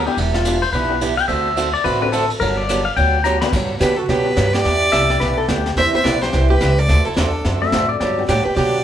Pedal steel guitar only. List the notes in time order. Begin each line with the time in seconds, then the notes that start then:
0.06 G4
0.35 F4
0.62 C5
0.73 B4
1.17 G5
1.28 E5
1.74 D5
1.84 B4
2.02 B4
2.12 A4
2.40 A#4
2.57 D5
2.85 F5
2.97 G5
3.24 A#5
3.41 B5
4.92 E5
5.10 D5
5.20 B4
5.38 A4
5.49 G4
7.62 E5
7.89 D5
8.00 D5